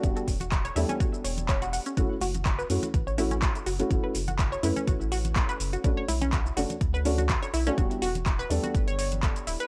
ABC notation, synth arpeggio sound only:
X:1
M:4/4
L:1/16
Q:"Swing 16ths" 1/4=124
K:F#phr
V:1 name="Synth arpeggio sound"
z A z F z c E C F z c z c F f C | F z F z2 B z F z c E C F z F z | z B z F z c E C F z F z2 B z F | z c E C F z F z2 B z F z c E C |
F z F z2 B z F z c c z A z E B |]